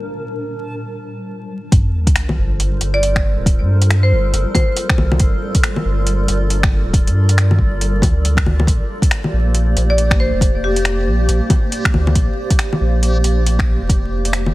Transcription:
Already playing: A#2 G3 D4 A#4 A5
1.72 G1 G3 F4 A4 A#4 C5, kick, closed hi-hat, sub drop
2.07 kick, closed hi-hat
2.16 finger snap, closed hi-hat
2.29 low bongo
2.38 G1
2.60 closed hi-hat
2.81 G1, closed hi-hat
2.94 D5
3.03 closed hi-hat
3.16 finger snap, kick
3.38 D1
3.46 kick, closed hi-hat
3.60 G2
3.82 closed hi-hat
3.91 finger snap, closed hi-hat
4.03 C5
4.12 G1
4.33 G1, closed hi-hat
4.55 C5, kick, closed hi-hat, low bongo
4.76 closed hi-hat
4.89 finger snap, kick
4.98 C2, low bongo
5.12 low bongo
5.19 G1 D5, kick, closed hi-hat
5.55 kick, closed hi-hat
5.64 finger snap, closed hi-hat
5.76 low bongo
5.85 G1
6.07 closed hi-hat
6.28 G1, closed hi-hat
6.50 closed hi-hat
6.63 finger snap, kick
6.85 D1
6.94 kick, closed hi-hat
7.07 G2, closed hi-hat
7.29 closed hi-hat
7.38 finger snap, closed hi-hat
7.51 low bongo
7.59 G1, kick
7.81 closed hi-hat
8.02 D2, kick, closed hi-hat, low bongo
8.25 closed hi-hat
8.37 finger snap, kick
8.46 D2, low bongo
8.60 low bongo
8.67 A#1 A#3 G4 C5, kick, closed hi-hat
9.02 kick, closed hi-hat
9.11 finger snap, closed hi-hat
9.24 low bongo
9.33 A#1
9.55 closed hi-hat
9.77 A#1, closed hi-hat
9.90 D5
9.98 closed hi-hat
10.11 finger snap, kick
10.20 C5
10.33 F1
10.41 kick, closed hi-hat
10.55 F1
10.64 G4
10.76 closed hi-hat
10.85 finger snap, closed hi-hat
11.07 A#1
11.28 A#1, closed hi-hat
11.50 kick, closed hi-hat, low bongo
11.72 closed hi-hat
11.85 finger snap, kick
11.94 D2, low bongo
12.07 low bongo
12.15 A#1, kick, closed hi-hat
12.50 kick, closed hi-hat
12.59 finger snap, closed hi-hat
12.73 low bongo
12.81 A#1
13.03 closed hi-hat
13.24 A#1, closed hi-hat
13.46 closed hi-hat
13.59 finger snap, kick
13.81 F1
13.89 kick, closed hi-hat
14.03 F1
14.25 closed hi-hat
14.33 finger snap, closed hi-hat
14.46 low bongo

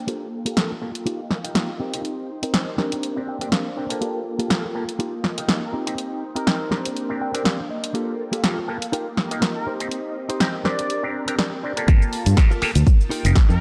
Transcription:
Already playing: A#3 G5
0.07 A#3 F4 G4 A4, closed hi-hat
0.45 A#3 F4 G4 A4, closed hi-hat
0.57 A#3 F4 G4 A4, snare, closed hi-hat
0.82 A#3 F4 G4 A4, muted clean electric guitar stroke
0.95 closed hi-hat
1.06 A#3 D#4 F4 G4 A#4 D#5, closed hi-hat
1.30 muted clean electric guitar stroke, snare
1.44 D#4 F4 G4 A#4, closed hi-hat
1.55 A#3 D#4 F4 G4, snare, closed hi-hat
1.80 C4 D#4 G4 C5 G5
1.93 C4 D#4 G4 C5, closed hi-hat
2.05 closed hi-hat
2.43 C4 D#4 A#4, closed hi-hat
2.54 C4 D#4 G4 A#4, snare, closed hi-hat
2.78 A#3 C4 D4 G4 A#4 C5, snare
2.92 closed hi-hat
3.03 closed hi-hat
3.16 C4 D4 G4 A#4
3.27 G5, muted clean electric guitar stroke
3.41 C4 D4 G4 A#4, closed hi-hat
3.52 C4 D4 G4 A#4 F5, snare, closed hi-hat
3.77 C4 D4 G4 A#4 C5, muted clean electric guitar stroke
3.89 A#3 F4 G4 A4, closed hi-hat
4.01 A#3 F4 G4 A4 G5, closed hi-hat
4.39 A#3 F4 G4 A4, closed hi-hat
4.50 A#3 F4 G4 A4, snare, closed hi-hat
4.75 A#3 F4 G4 A4, muted clean electric guitar stroke
4.89 closed hi-hat
4.99 A#3 D#4 F4 G4 D#5 G5, closed hi-hat
5.24 muted clean electric guitar stroke, snare
5.37 D#4 F4 G4 A#4, closed hi-hat
5.48 A#3 D#4 F4 G4, snare, closed hi-hat
5.62 A#4
5.73 C4 D#4 G4 C5
5.86 C4 D#4 G4 C5, closed hi-hat
5.98 closed hi-hat
6.35 C4 D#4 G4 A#4, closed hi-hat
6.47 C4 D#4 G4 A#4, snare, closed hi-hat
6.71 A#3 C4 D4 G4 A#4 G5, snare
6.85 closed hi-hat
6.97 closed hi-hat
7.09 C4 D4 G4 A#4
7.21 G5, muted clean electric guitar stroke
7.34 C4 D4 G4 A#4, closed hi-hat
7.45 C4 D4 G4 A#4 D5 F5, snare, closed hi-hat
7.69 D#5, muted clean electric guitar stroke
7.84 closed hi-hat
7.94 A#3 F4 G4 A4 G5, closed hi-hat
8.32 A#3 F4 G4 A4, closed hi-hat
8.44 A#3 F4 G4 A4, snare, closed hi-hat
8.68 A#3 F4 G4 A4, muted clean electric guitar stroke
8.82 closed hi-hat
8.92 A#3 D#4 F4 G4 A#4 F5, closed hi-hat
9.17 muted clean electric guitar stroke, snare
9.31 A#3 D#4 F4 G4, closed hi-hat
9.42 D#4 F4 G4 A#4, snare, closed hi-hat
9.56 A#4
9.66 C4 D#4 G4 C5 D#5
9.80 C4 D#4 G4 C5, closed hi-hat
9.91 closed hi-hat
10.29 D#4 G4 C5, closed hi-hat
10.40 C4 D#4 G4 A#4, snare, closed hi-hat
10.65 C4 D4 G4 A#4 C5 D5, snare
10.79 closed hi-hat
10.90 closed hi-hat
11.03 C4 D4 G4 A#4
11.14 muted clean electric guitar stroke
11.27 C4 D4 G4 A#4, closed hi-hat
11.39 D4 G4 A#4 D5 G5, snare, closed hi-hat
11.63 C4 D4 G4 A#4 D5, muted clean electric guitar stroke
11.77 A#3 F4 G4 A4, closed hi-hat
11.88 G1 A#3 F4 G4 A4 A5, kick, closed hi-hat, shaker
12.02 shaker
12.13 open hi-hat
12.26 G2, closed hi-hat, shaker
12.37 A#3 F4 G4 A4, muted clean electric guitar stroke, kick, snare, closed hi-hat, shaker
12.51 F4 G4 A4 A#4, shaker
12.62 A#3 F4 G4 A4, muted fingered electric bass stroke, open hi-hat
12.75 D2, closed hi-hat, shaker
12.86 D#4 G5, muted clean electric guitar stroke, kick, closed hi-hat, shaker
13.01 shaker
13.10 D#4 F4 G4 A#4, open hi-hat
13.25 F1 D#4 F4 G4 A#4, closed hi-hat, shaker
13.35 kick, snare, closed hi-hat, shaker
13.49 F2 D#4 F4 G4 A#4, shaker

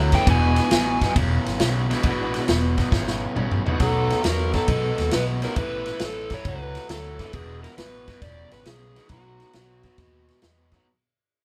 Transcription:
Already playing: D2 A2 F#3
0.12 A2 E3 G#3 B3 D4 E4 F#4 G5, kick, snare, ride
0.27 E1 E2 B2 G#5, kick, ride
0.56 snare, ride
0.71 A1 E2 B2, snare, ride
1.01 E2 B2, kick, snare, ride
1.15 E1 E2 C#3, kick, ride
1.46 G#1, snare, ride
1.59 B1 E2 C#3, snare, ride
1.89 E2 B2 G#3 B3 D4 E4 F#4, snare, ride
2.03 A1 E2 B2, kick, ride
2.34 snare, ride
2.47 E1 E2 B2, snare, ride
2.77 E2 B2, kick, snare, ride
2.91 G#1 E2 C#3, kick, snare
3.07 snare
3.35 A1 E2 C#3, mid tom
3.51 mid tom
3.66 E2 B2 A3 B3 C#4 D#4 F#4, floor tom
3.80 B1 B2 F#3 A4, kick, snare, ride
4.10 snare, ride
4.23 E2 B2 F#3 A#4, snare, ride
4.53 B2 F#3 A4, kick, snare, ride
4.68 B1 B2 G#3, kick, ride
4.98 D#2, snare, ride
5.11 B1 B2 G#3 B4, snare, ride
5.42 B2 F#3 A3 B3 C#4 E4 G4 A#4, snare, ride
5.56 A1 A2 E3 B4, kick, ride
5.86 snare, ride
6.00 A1 A2 E3, snare, ride
6.05 A4
6.30 A2 E3, kick, snare, ride
6.34 C#5
6.45 C#2 A2 F#3 B4, kick, ride
6.75 snare, ride
6.89 D2 A2 F#3 A4, snare, ride
7.19 A2 E3 G#3 B3 D4 E4 F#4, kick, snare, ride
7.33 E1 E2 B2 G#4, kick, ride
7.63 A#4, snare, ride
7.77 A1 E2 B2 B4, snare, ride
8.07 E2 B2, kick, snare, ride
8.22 E1 E2 C#3 D5, kick, snare, ride
8.51 G#1 B4, snare, ride
8.65 B1 E2 C#3 G#4, snare, ride
8.95 E2 B2 A3 B3 C#4 D#4 F#4, snare, ride
9.09 B1 B2 F#3 F#4, kick, snare, ride
9.40 snare, ride
9.53 B1 B2 F#3, snare, ride
9.83 B2 F#3, kick, snare, ride
9.98 D#2 B2 G#3, kick, snare, ride
10.28 snare, ride
10.42 E2 B2 G#3, snare, ride
10.71 B2 F#3 A3 B3 C#4 D#4 F#4, kick, snare, ride

